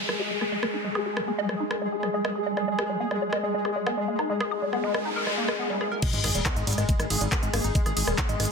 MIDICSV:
0, 0, Header, 1, 8, 480
1, 0, Start_track
1, 0, Tempo, 431655
1, 939, Time_signature, 4, 2, 24, 8
1, 9471, End_track
2, 0, Start_track
2, 0, Title_t, "Synth texture"
2, 0, Program_c, 0, 99
2, 0, Note_on_c, 0, 56, 90
2, 0, Note_on_c, 0, 68, 88
2, 6685, Note_off_c, 0, 56, 0
2, 6686, Note_off_c, 0, 68, 0
2, 6699, Note_on_c, 0, 56, 96
2, 6699, Note_on_c, 0, 68, 90
2, 9471, Note_off_c, 0, 56, 0
2, 9471, Note_off_c, 0, 68, 0
2, 9471, End_track
3, 0, Start_track
3, 0, Title_t, "Synth arpeggio sound"
3, 0, Program_c, 1, 84
3, 99, Note_on_c, 1, 56, 79
3, 143, Note_off_c, 1, 56, 0
3, 219, Note_on_c, 1, 68, 77
3, 285, Note_off_c, 1, 68, 0
3, 339, Note_on_c, 1, 55, 71
3, 383, Note_off_c, 1, 55, 0
3, 459, Note_on_c, 1, 59, 76
3, 485, Note_off_c, 1, 59, 0
3, 579, Note_on_c, 1, 56, 81
3, 623, Note_off_c, 1, 56, 0
3, 699, Note_on_c, 1, 58, 76
3, 743, Note_off_c, 1, 58, 0
3, 819, Note_on_c, 1, 63, 73
3, 863, Note_off_c, 1, 63, 0
3, 939, Note_on_c, 1, 56, 80
3, 1005, Note_off_c, 1, 56, 0
3, 1059, Note_on_c, 1, 68, 99
3, 1125, Note_off_c, 1, 68, 0
3, 1179, Note_on_c, 1, 68, 74
3, 1245, Note_off_c, 1, 68, 0
3, 1300, Note_on_c, 1, 55, 75
3, 1343, Note_off_c, 1, 55, 0
3, 1420, Note_on_c, 1, 59, 87
3, 1446, Note_off_c, 1, 59, 0
3, 1539, Note_on_c, 1, 56, 99
3, 1605, Note_off_c, 1, 56, 0
3, 1659, Note_on_c, 1, 56, 79
3, 1703, Note_off_c, 1, 56, 0
3, 1780, Note_on_c, 1, 63, 77
3, 1823, Note_off_c, 1, 63, 0
3, 1899, Note_on_c, 1, 70, 82
3, 1926, Note_off_c, 1, 70, 0
3, 2019, Note_on_c, 1, 56, 77
3, 2063, Note_off_c, 1, 56, 0
3, 2139, Note_on_c, 1, 68, 79
3, 2205, Note_off_c, 1, 68, 0
3, 2259, Note_on_c, 1, 55, 73
3, 2303, Note_off_c, 1, 55, 0
3, 2379, Note_on_c, 1, 56, 83
3, 2423, Note_off_c, 1, 56, 0
3, 2499, Note_on_c, 1, 56, 80
3, 2543, Note_off_c, 1, 56, 0
3, 2618, Note_on_c, 1, 68, 78
3, 2685, Note_off_c, 1, 68, 0
3, 2739, Note_on_c, 1, 56, 75
3, 2805, Note_off_c, 1, 56, 0
3, 2859, Note_on_c, 1, 56, 82
3, 2903, Note_off_c, 1, 56, 0
3, 2979, Note_on_c, 1, 56, 80
3, 3023, Note_off_c, 1, 56, 0
3, 3099, Note_on_c, 1, 68, 76
3, 3165, Note_off_c, 1, 68, 0
3, 3219, Note_on_c, 1, 55, 77
3, 3263, Note_off_c, 1, 55, 0
3, 3339, Note_on_c, 1, 59, 85
3, 3365, Note_off_c, 1, 59, 0
3, 3459, Note_on_c, 1, 56, 77
3, 3503, Note_off_c, 1, 56, 0
3, 3579, Note_on_c, 1, 55, 76
3, 3623, Note_off_c, 1, 55, 0
3, 3699, Note_on_c, 1, 56, 101
3, 3743, Note_off_c, 1, 56, 0
3, 3819, Note_on_c, 1, 56, 79
3, 3885, Note_off_c, 1, 56, 0
3, 3939, Note_on_c, 1, 56, 74
3, 3983, Note_off_c, 1, 56, 0
3, 4059, Note_on_c, 1, 68, 74
3, 4125, Note_off_c, 1, 68, 0
3, 4179, Note_on_c, 1, 55, 78
3, 4223, Note_off_c, 1, 55, 0
3, 4299, Note_on_c, 1, 59, 82
3, 4325, Note_off_c, 1, 59, 0
3, 4419, Note_on_c, 1, 56, 82
3, 4463, Note_off_c, 1, 56, 0
3, 4539, Note_on_c, 1, 58, 75
3, 4583, Note_off_c, 1, 58, 0
3, 4659, Note_on_c, 1, 63, 72
3, 4703, Note_off_c, 1, 63, 0
3, 4779, Note_on_c, 1, 56, 84
3, 4845, Note_off_c, 1, 56, 0
3, 4899, Note_on_c, 1, 68, 101
3, 4965, Note_off_c, 1, 68, 0
3, 5019, Note_on_c, 1, 68, 76
3, 5085, Note_off_c, 1, 68, 0
3, 5139, Note_on_c, 1, 55, 74
3, 5183, Note_off_c, 1, 55, 0
3, 5259, Note_on_c, 1, 59, 88
3, 5285, Note_off_c, 1, 59, 0
3, 5379, Note_on_c, 1, 56, 103
3, 5445, Note_off_c, 1, 56, 0
3, 5499, Note_on_c, 1, 56, 80
3, 5543, Note_off_c, 1, 56, 0
3, 5619, Note_on_c, 1, 63, 72
3, 5663, Note_off_c, 1, 63, 0
3, 5739, Note_on_c, 1, 70, 84
3, 5765, Note_off_c, 1, 70, 0
3, 5859, Note_on_c, 1, 56, 78
3, 5903, Note_off_c, 1, 56, 0
3, 5979, Note_on_c, 1, 58, 76
3, 6045, Note_off_c, 1, 58, 0
3, 6099, Note_on_c, 1, 56, 75
3, 6143, Note_off_c, 1, 56, 0
3, 6219, Note_on_c, 1, 59, 82
3, 6285, Note_off_c, 1, 59, 0
3, 6339, Note_on_c, 1, 55, 81
3, 6365, Note_off_c, 1, 55, 0
3, 6459, Note_on_c, 1, 68, 74
3, 6503, Note_off_c, 1, 68, 0
3, 6579, Note_on_c, 1, 70, 94
3, 6645, Note_off_c, 1, 70, 0
3, 6698, Note_on_c, 1, 56, 85
3, 6743, Note_off_c, 1, 56, 0
3, 6819, Note_on_c, 1, 56, 80
3, 6863, Note_off_c, 1, 56, 0
3, 6939, Note_on_c, 1, 68, 77
3, 7005, Note_off_c, 1, 68, 0
3, 7059, Note_on_c, 1, 55, 78
3, 7103, Note_off_c, 1, 55, 0
3, 7178, Note_on_c, 1, 59, 87
3, 7205, Note_off_c, 1, 59, 0
3, 7299, Note_on_c, 1, 56, 79
3, 7343, Note_off_c, 1, 56, 0
3, 7418, Note_on_c, 1, 55, 82
3, 7463, Note_off_c, 1, 55, 0
3, 7538, Note_on_c, 1, 56, 98
3, 7583, Note_off_c, 1, 56, 0
3, 7659, Note_on_c, 1, 56, 84
3, 7725, Note_off_c, 1, 56, 0
3, 7779, Note_on_c, 1, 56, 76
3, 7823, Note_off_c, 1, 56, 0
3, 7899, Note_on_c, 1, 68, 78
3, 7965, Note_off_c, 1, 68, 0
3, 8019, Note_on_c, 1, 55, 75
3, 8063, Note_off_c, 1, 55, 0
3, 8138, Note_on_c, 1, 59, 82
3, 8165, Note_off_c, 1, 59, 0
3, 8259, Note_on_c, 1, 56, 82
3, 8303, Note_off_c, 1, 56, 0
3, 8378, Note_on_c, 1, 58, 78
3, 8423, Note_off_c, 1, 58, 0
3, 8499, Note_on_c, 1, 63, 77
3, 8543, Note_off_c, 1, 63, 0
3, 8619, Note_on_c, 1, 56, 83
3, 8685, Note_off_c, 1, 56, 0
3, 8738, Note_on_c, 1, 68, 102
3, 8805, Note_off_c, 1, 68, 0
3, 8858, Note_on_c, 1, 68, 78
3, 8925, Note_off_c, 1, 68, 0
3, 8979, Note_on_c, 1, 55, 75
3, 9023, Note_off_c, 1, 55, 0
3, 9099, Note_on_c, 1, 59, 91
3, 9125, Note_off_c, 1, 59, 0
3, 9219, Note_on_c, 1, 56, 105
3, 9285, Note_off_c, 1, 56, 0
3, 9339, Note_on_c, 1, 56, 79
3, 9383, Note_off_c, 1, 56, 0
3, 9471, End_track
4, 0, Start_track
4, 0, Title_t, "Analog synth bass"
4, 0, Program_c, 2, 38
4, 6819, Note_on_c, 2, 32, 91
4, 6890, Note_off_c, 2, 32, 0
4, 6939, Note_on_c, 2, 32, 101
4, 7010, Note_off_c, 2, 32, 0
4, 7059, Note_on_c, 2, 27, 93
4, 7130, Note_off_c, 2, 27, 0
4, 7299, Note_on_c, 2, 32, 86
4, 7370, Note_off_c, 2, 32, 0
4, 7419, Note_on_c, 2, 32, 103
4, 7490, Note_off_c, 2, 32, 0
4, 7539, Note_on_c, 2, 32, 95
4, 7610, Note_off_c, 2, 32, 0
4, 7779, Note_on_c, 2, 32, 85
4, 7850, Note_off_c, 2, 32, 0
4, 7899, Note_on_c, 2, 32, 106
4, 7970, Note_off_c, 2, 32, 0
4, 8019, Note_on_c, 2, 32, 94
4, 8090, Note_off_c, 2, 32, 0
4, 8259, Note_on_c, 2, 32, 91
4, 8330, Note_off_c, 2, 32, 0
4, 8379, Note_on_c, 2, 32, 99
4, 8450, Note_off_c, 2, 32, 0
4, 8499, Note_on_c, 2, 32, 96
4, 8570, Note_off_c, 2, 32, 0
4, 8739, Note_on_c, 2, 32, 90
4, 8810, Note_off_c, 2, 32, 0
4, 8859, Note_on_c, 2, 32, 102
4, 8930, Note_off_c, 2, 32, 0
4, 8979, Note_on_c, 2, 27, 95
4, 9050, Note_off_c, 2, 27, 0
4, 9219, Note_on_c, 2, 32, 85
4, 9290, Note_off_c, 2, 32, 0
4, 9339, Note_on_c, 2, 32, 100
4, 9410, Note_off_c, 2, 32, 0
4, 9471, End_track
5, 0, Start_track
5, 0, Title_t, "Downlifter"
5, 0, Program_c, 3, 103
5, 0, Note_on_c, 3, 60, 72
5, 2859, Note_off_c, 3, 60, 0
5, 9471, End_track
6, 0, Start_track
6, 0, Title_t, "Noise sweep"
6, 0, Program_c, 4, 103
6, 4779, Note_on_c, 4, 60, 76
6, 6699, Note_off_c, 4, 60, 0
6, 9471, End_track
7, 0, Start_track
7, 0, Title_t, "Sub drop"
7, 0, Program_c, 5, 103
7, 6699, Note_on_c, 5, 60, 76
7, 8619, Note_off_c, 5, 60, 0
7, 9471, End_track
8, 0, Start_track
8, 0, Title_t, "Drums"
8, 99, Note_on_c, 9, 37, 74
8, 210, Note_off_c, 9, 37, 0
8, 459, Note_on_c, 9, 37, 37
8, 570, Note_off_c, 9, 37, 0
8, 699, Note_on_c, 9, 37, 74
8, 810, Note_off_c, 9, 37, 0
8, 1059, Note_on_c, 9, 37, 38
8, 1170, Note_off_c, 9, 37, 0
8, 1299, Note_on_c, 9, 37, 73
8, 1410, Note_off_c, 9, 37, 0
8, 1659, Note_on_c, 9, 37, 39
8, 1770, Note_off_c, 9, 37, 0
8, 1899, Note_on_c, 9, 37, 75
8, 2010, Note_off_c, 9, 37, 0
8, 2259, Note_on_c, 9, 37, 37
8, 2370, Note_off_c, 9, 37, 0
8, 2499, Note_on_c, 9, 37, 73
8, 2610, Note_off_c, 9, 37, 0
8, 2859, Note_on_c, 9, 37, 37
8, 2970, Note_off_c, 9, 37, 0
8, 3099, Note_on_c, 9, 37, 82
8, 3210, Note_off_c, 9, 37, 0
8, 3459, Note_on_c, 9, 37, 38
8, 3570, Note_off_c, 9, 37, 0
8, 3699, Note_on_c, 9, 37, 76
8, 3810, Note_off_c, 9, 37, 0
8, 4059, Note_on_c, 9, 37, 39
8, 4170, Note_off_c, 9, 37, 0
8, 4299, Note_on_c, 9, 37, 72
8, 4410, Note_off_c, 9, 37, 0
8, 4659, Note_on_c, 9, 37, 36
8, 4770, Note_off_c, 9, 37, 0
8, 4899, Note_on_c, 9, 37, 78
8, 5010, Note_off_c, 9, 37, 0
8, 5259, Note_on_c, 9, 37, 40
8, 5370, Note_off_c, 9, 37, 0
8, 5499, Note_on_c, 9, 37, 81
8, 5610, Note_off_c, 9, 37, 0
8, 5859, Note_on_c, 9, 37, 40
8, 5970, Note_off_c, 9, 37, 0
8, 6099, Note_on_c, 9, 37, 78
8, 6210, Note_off_c, 9, 37, 0
8, 6459, Note_on_c, 9, 37, 40
8, 6570, Note_off_c, 9, 37, 0
8, 6699, Note_on_c, 9, 36, 123
8, 6699, Note_on_c, 9, 42, 83
8, 6699, Note_on_c, 9, 49, 107
8, 6810, Note_off_c, 9, 36, 0
8, 6810, Note_off_c, 9, 42, 0
8, 6810, Note_off_c, 9, 49, 0
8, 6819, Note_on_c, 9, 42, 56
8, 6930, Note_off_c, 9, 42, 0
8, 6939, Note_on_c, 9, 37, 42
8, 6939, Note_on_c, 9, 46, 116
8, 6939, Note_on_c, 9, 51, 88
8, 7050, Note_off_c, 9, 37, 0
8, 7050, Note_off_c, 9, 46, 0
8, 7050, Note_off_c, 9, 51, 0
8, 7059, Note_on_c, 9, 42, 57
8, 7170, Note_off_c, 9, 42, 0
8, 7179, Note_on_c, 9, 36, 120
8, 7179, Note_on_c, 9, 37, 79
8, 7179, Note_on_c, 9, 39, 127
8, 7179, Note_on_c, 9, 42, 84
8, 7290, Note_off_c, 9, 36, 0
8, 7290, Note_off_c, 9, 37, 0
8, 7290, Note_off_c, 9, 39, 0
8, 7290, Note_off_c, 9, 42, 0
8, 7299, Note_on_c, 9, 42, 57
8, 7410, Note_off_c, 9, 42, 0
8, 7419, Note_on_c, 9, 46, 101
8, 7419, Note_on_c, 9, 51, 82
8, 7479, Note_on_c, 9, 42, 71
8, 7531, Note_off_c, 9, 46, 0
8, 7531, Note_off_c, 9, 51, 0
8, 7539, Note_off_c, 9, 42, 0
8, 7539, Note_on_c, 9, 37, 40
8, 7539, Note_on_c, 9, 42, 54
8, 7650, Note_off_c, 9, 37, 0
8, 7650, Note_off_c, 9, 42, 0
8, 7659, Note_on_c, 9, 36, 116
8, 7659, Note_on_c, 9, 42, 83
8, 7770, Note_off_c, 9, 36, 0
8, 7770, Note_off_c, 9, 42, 0
8, 7779, Note_on_c, 9, 37, 80
8, 7779, Note_on_c, 9, 42, 59
8, 7890, Note_off_c, 9, 37, 0
8, 7890, Note_off_c, 9, 42, 0
8, 7899, Note_on_c, 9, 46, 108
8, 7899, Note_on_c, 9, 51, 83
8, 8011, Note_off_c, 9, 46, 0
8, 8011, Note_off_c, 9, 51, 0
8, 8019, Note_on_c, 9, 42, 59
8, 8130, Note_off_c, 9, 42, 0
8, 8139, Note_on_c, 9, 36, 117
8, 8139, Note_on_c, 9, 37, 38
8, 8139, Note_on_c, 9, 39, 124
8, 8139, Note_on_c, 9, 42, 80
8, 8250, Note_off_c, 9, 36, 0
8, 8251, Note_off_c, 9, 37, 0
8, 8251, Note_off_c, 9, 39, 0
8, 8251, Note_off_c, 9, 42, 0
8, 8259, Note_on_c, 9, 42, 58
8, 8371, Note_off_c, 9, 42, 0
8, 8379, Note_on_c, 9, 37, 74
8, 8379, Note_on_c, 9, 46, 94
8, 8379, Note_on_c, 9, 51, 82
8, 8490, Note_off_c, 9, 37, 0
8, 8490, Note_off_c, 9, 46, 0
8, 8490, Note_off_c, 9, 51, 0
8, 8499, Note_on_c, 9, 42, 55
8, 8610, Note_off_c, 9, 42, 0
8, 8619, Note_on_c, 9, 36, 123
8, 8619, Note_on_c, 9, 42, 81
8, 8730, Note_off_c, 9, 36, 0
8, 8730, Note_off_c, 9, 42, 0
8, 8739, Note_on_c, 9, 37, 40
8, 8739, Note_on_c, 9, 42, 58
8, 8850, Note_off_c, 9, 37, 0
8, 8850, Note_off_c, 9, 42, 0
8, 8859, Note_on_c, 9, 46, 123
8, 8859, Note_on_c, 9, 51, 86
8, 8970, Note_off_c, 9, 46, 0
8, 8970, Note_off_c, 9, 51, 0
8, 8979, Note_on_c, 9, 37, 77
8, 8979, Note_on_c, 9, 42, 52
8, 9090, Note_off_c, 9, 37, 0
8, 9090, Note_off_c, 9, 42, 0
8, 9099, Note_on_c, 9, 36, 124
8, 9099, Note_on_c, 9, 39, 121
8, 9099, Note_on_c, 9, 42, 82
8, 9210, Note_off_c, 9, 36, 0
8, 9210, Note_off_c, 9, 39, 0
8, 9210, Note_off_c, 9, 42, 0
8, 9219, Note_on_c, 9, 42, 55
8, 9330, Note_off_c, 9, 42, 0
8, 9339, Note_on_c, 9, 37, 40
8, 9339, Note_on_c, 9, 46, 104
8, 9339, Note_on_c, 9, 51, 81
8, 9399, Note_on_c, 9, 42, 70
8, 9450, Note_off_c, 9, 37, 0
8, 9450, Note_off_c, 9, 46, 0
8, 9450, Note_off_c, 9, 51, 0
8, 9471, Note_off_c, 9, 42, 0
8, 9471, End_track
0, 0, End_of_file